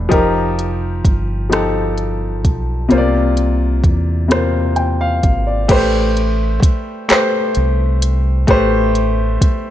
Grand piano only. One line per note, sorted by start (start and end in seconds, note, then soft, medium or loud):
0.00 0.14 A2 medium
0.00 0.13 G3 medium
0.00 0.14 D4 medium
0.00 0.13 B4 medium
0.09 1.09 F3 medium
0.09 1.10 D#4 medium
0.09 1.10 G4 medium
0.09 1.11 A#4 medium
1.50 2.49 F3 medium
1.50 2.50 D#4 medium
1.50 2.51 G4 medium
1.50 2.51 A4 medium
2.89 3.89 C3 medium
2.89 3.89 A#3 medium
2.89 3.90 F4 medium
2.89 2.98 C5 medium
2.98 3.93 D5 medium
4.28 5.28 C3 medium
4.28 5.29 A#3 medium
4.28 5.30 F4 medium
4.28 5.30 C5 medium
4.76 4.99 G5 medium
5.01 5.45 F5 medium
5.47 5.91 D5 medium
5.68 6.68 A3 medium
5.68 6.68 G4 medium
5.68 6.69 B4 medium
5.68 6.70 C5 loud
7.08 8.08 A3 medium
7.08 8.08 G4 medium
7.08 8.09 B4 medium
7.08 8.10 C5 medium
8.47 9.47 A3 loud
8.47 9.48 G4 medium
8.47 9.48 B4 medium
8.47 9.49 C5 loud